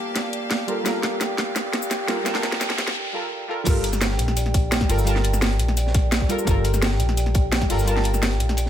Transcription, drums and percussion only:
0.16 snare medium
0.16 closed hi-hat loud
0.33 closed hi-hat medium
0.51 snare medium
0.51 closed hi-hat medium
0.68 closed hi-hat medium
0.86 snare medium
0.86 closed hi-hat medium
0.86 cabasa soft
1.03 snare medium
1.03 closed hi-hat medium
1.21 snare medium
1.21 closed hi-hat medium
1.21 cabasa soft
1.38 snare medium
1.38 closed hi-hat medium
1.56 snare medium
1.56 closed hi-hat medium
1.56 cabasa soft
1.73 snare medium
1.73 closed hi-hat medium
1.82 cabasa medium
1.91 snare medium
1.91 closed hi-hat medium
1.91 cabasa soft
2.08 snare medium
2.08 closed hi-hat medium
2.26 snare medium
2.26 closed hi-hat medium
2.26 cabasa medium
2.35 snare medium
2.43 snare loud
2.43 closed hi-hat medium
2.52 snare medium
2.61 snare loud
2.61 closed hi-hat medium
2.61 cabasa soft
2.70 snare medium
2.78 snare loud
2.78 closed hi-hat medium
2.87 snare medium
3.65 kick loud
3.65 closed hi-hat loud
3.65 closed hi-hat medium
3.65 crash loud
3.65 cabasa soft
3.84 closed hi-hat medium
3.93 snare soft
3.93 cabasa medium
4.01 snare loud
4.01 closed hi-hat medium
4.01 cabasa medium
4.11 snare medium
4.19 closed hi-hat medium
4.19 closed hi-hat loud
4.28 snare soft
4.36 closed hi-hat medium
4.36 cabasa soft
4.46 snare soft
4.54 kick loud
4.54 closed hi-hat medium
4.54 closed hi-hat loud
4.71 snare loud
4.71 closed hi-hat medium
4.71 cabasa soft
4.81 kick medium
4.81 snare medium
4.89 closed hi-hat loud
4.89 open hi-hat medium
4.89 cabasa soft
4.99 cabasa medium
5.06 closed hi-hat medium
5.06 cabasa soft
5.16 snare soft
5.24 closed hi-hat medium
5.34 snare soft
5.34 cabasa medium
5.41 snare loud
5.41 closed hi-hat medium
5.41 cabasa soft
5.51 closed hi-hat soft
5.59 closed hi-hat medium
5.68 snare soft
5.77 closed hi-hat medium
5.77 cabasa soft
5.87 snare medium
5.94 kick loud
5.94 closed hi-hat loud
5.94 closed hi-hat medium
6.12 snare loud
6.12 closed hi-hat medium
6.12 cabasa soft
6.21 kick medium
6.29 closed hi-hat medium
6.29 cabasa soft
6.39 cabasa medium
6.47 kick loud
6.47 closed hi-hat medium
6.47 cabasa soft
6.64 closed hi-hat medium
6.74 snare soft
6.74 cabasa medium
6.82 snare loud
6.82 closed hi-hat medium
6.82 cabasa soft
6.91 snare medium
6.99 closed hi-hat medium
7.09 snare soft
7.17 closed hi-hat medium
7.17 cabasa soft
7.26 snare soft
7.34 kick loud
7.34 closed hi-hat medium
7.52 snare loud
7.52 closed hi-hat medium
7.52 cabasa soft
7.61 kick medium
7.61 snare medium
7.70 closed hi-hat medium
7.70 open hi-hat medium
7.70 cabasa soft
7.79 cabasa medium
7.88 closed hi-hat medium
7.88 cabasa soft
7.97 snare soft
8.04 closed hi-hat medium
8.05 closed hi-hat medium
8.14 snare soft
8.14 cabasa medium
8.23 snare loud
8.23 closed hi-hat medium
8.23 cabasa soft
8.31 closed hi-hat soft
8.40 closed hi-hat medium
8.49 snare soft
8.57 closed hi-hat medium
8.57 cabasa soft
8.66 snare soft

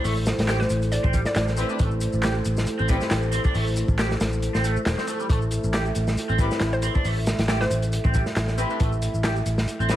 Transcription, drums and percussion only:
0.04 open hi-hat medium
0.04 shaker soft
0.17 shaker soft
0.26 snare loud
0.26 closed hi-hat medium
0.26 shaker medium
0.38 snare loud
0.38 closed hi-hat medium
0.38 shaker soft
0.48 snare loud
0.48 clap loud
0.48 closed hi-hat medium
0.48 shaker soft
0.60 snare medium
0.60 shaker soft
0.70 closed hi-hat medium
0.70 shaker medium
0.82 closed hi-hat soft
0.82 shaker soft
0.92 closed hi-hat medium
0.92 shaker soft
1.04 kick loud
1.04 shaker soft
1.13 kick medium
1.13 closed hi-hat medium
1.13 shaker medium
1.25 snare medium
1.25 shaker soft
1.35 snare loud
1.35 clap loud
1.35 closed hi-hat loud
1.35 shaker soft
1.48 snare soft
1.48 shaker soft
1.57 closed hi-hat medium
1.57 shaker medium
1.69 shaker soft
1.79 kick loud
1.79 closed hi-hat medium
1.79 shaker soft
1.91 shaker soft
2.01 closed hi-hat medium
2.01 shaker medium
2.13 shaker soft
2.23 snare loud
2.23 clap loud
2.23 closed hi-hat loud
2.23 shaker soft
2.35 shaker soft
2.45 closed hi-hat medium
2.45 shaker medium
2.57 snare medium
2.57 shaker soft
2.67 closed hi-hat medium
2.67 shaker soft
2.79 shaker soft
2.89 kick loud
2.89 closed hi-hat medium
2.89 shaker medium
3.01 snare soft
3.01 shaker soft
3.11 snare loud
3.11 clap loud
3.11 closed hi-hat medium
3.11 shaker soft
3.22 shaker soft
3.32 closed hi-hat medium
3.32 shaker medium
3.44 kick loud
3.44 shaker soft
3.55 open hi-hat medium
3.55 shaker soft
3.67 shaker soft
3.76 closed hi-hat medium
3.76 shaker medium
3.88 kick medium
3.88 shaker soft
3.99 snare loud
3.99 clap loud
3.99 closed hi-hat medium
3.99 shaker soft
4.11 snare medium
4.11 shaker soft
4.21 snare loud
4.21 closed hi-hat medium
4.21 shaker medium
4.33 shaker soft
4.42 closed hi-hat medium
4.42 shaker soft
4.54 snare soft
4.54 shaker soft
4.64 closed hi-hat medium
4.64 shaker medium
4.76 shaker soft
4.86 snare loud
4.86 clap loud
4.86 closed hi-hat medium
4.86 shaker soft
4.98 snare medium
4.98 shaker soft
5.07 closed hi-hat medium
5.07 shaker medium
5.20 shaker soft
5.30 kick loud
5.30 closed hi-hat medium
5.30 shaker soft
5.42 shaker soft
5.51 closed hi-hat medium
5.51 shaker medium
5.64 shaker soft
5.73 snare loud
5.73 clap loud
5.73 closed hi-hat medium
5.73 shaker soft
5.86 shaker soft
5.95 closed hi-hat medium
5.95 shaker medium
6.07 snare medium
6.07 shaker soft
6.17 closed hi-hat medium
6.17 shaker soft
6.29 shaker soft
6.39 kick loud
6.39 closed hi-hat medium
6.39 shaker medium
6.51 snare medium
6.51 shaker soft
6.60 snare loud
6.60 clap loud
6.60 closed hi-hat medium
6.60 shaker soft
6.73 shaker soft
6.82 closed hi-hat medium
6.82 shaker medium
6.95 kick medium
6.95 shaker soft
7.05 open hi-hat medium
7.05 shaker soft
7.16 shaker soft
7.27 snare loud
7.27 closed hi-hat medium
7.27 shaker medium
7.39 snare loud
7.39 closed hi-hat medium
7.39 shaker soft
7.48 snare loud
7.48 clap loud
7.48 closed hi-hat medium
7.48 shaker soft
7.61 snare medium
7.61 shaker soft
7.71 closed hi-hat medium
7.71 shaker medium
7.82 closed hi-hat soft
7.82 shaker soft
7.92 closed hi-hat medium
7.92 shaker soft
8.04 kick medium
8.04 shaker soft
8.14 kick loud
8.14 closed hi-hat medium
8.14 shaker medium
8.26 snare soft
8.26 shaker soft
8.36 snare loud
8.36 clap loud
8.36 closed hi-hat loud
8.36 shaker soft
8.48 snare soft
8.48 shaker soft
8.58 closed hi-hat medium
8.58 shaker medium
8.70 shaker soft
8.80 kick loud
8.80 closed hi-hat loud
8.80 shaker soft
8.92 shaker soft
9.02 closed hi-hat medium
9.02 shaker medium
9.14 shaker soft
9.24 snare loud
9.24 clap loud
9.24 closed hi-hat medium
9.24 shaker soft
9.36 shaker soft
9.46 closed hi-hat medium
9.46 shaker medium
9.58 snare medium
9.58 shaker soft
9.68 closed hi-hat medium
9.68 shaker soft
9.80 shaker soft
9.89 snare loud
9.89 closed hi-hat medium
9.89 shaker medium

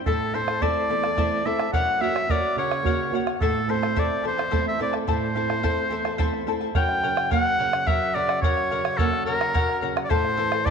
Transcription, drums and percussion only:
0.06 bombo rim soft
0.06 bombo low medium
0.34 bombo rim soft
0.48 bombo rim medium
0.62 bombo low medium
1.04 bombo rim medium
1.18 bombo low medium
1.46 bombo rim soft
1.59 bombo rim medium
1.73 bombo rim soft
1.73 bombo low medium
2.02 bombo rim soft
2.16 bombo rim medium
2.29 bombo low medium
2.71 bombo rim medium
2.85 bombo low medium
3.13 bombo rim soft
3.27 bombo rim medium
3.41 bombo rim soft
3.41 bombo low medium
3.69 bombo rim soft
3.83 bombo rim medium
3.97 bombo low medium
4.39 bombo rim medium
4.53 bombo low medium
4.81 bombo rim soft
4.94 bombo rim soft
5.08 bombo low medium
5.50 bombo rim soft
5.64 bombo low medium
6.05 bombo rim medium
6.19 bombo rim soft
6.19 bombo low medium
6.33 bombo rim soft
6.75 bombo rim soft
6.75 bombo low medium
6.89 bombo rim soft
7.03 bombo rim soft
7.17 bombo rim medium
7.31 bombo rim soft
7.31 bombo low medium
7.45 bombo rim soft
7.73 bombo rim medium
7.87 bombo low medium
8.02 bombo rim soft
8.29 bombo rim medium
8.42 bombo rim soft
8.42 bombo low medium
8.57 bombo rim soft
8.71 bombo rim soft
8.85 bombo rim medium
8.99 bombo low medium
9.13 bombo rim soft
9.41 bombo rim medium
9.55 bombo low medium
9.69 bombo rim soft
9.97 bombo rim medium
10.11 bombo rim soft
10.11 bombo low medium
10.25 bombo rim soft
10.38 bombo rim soft
10.52 bombo rim medium
10.66 bombo rim soft
10.66 bombo low medium

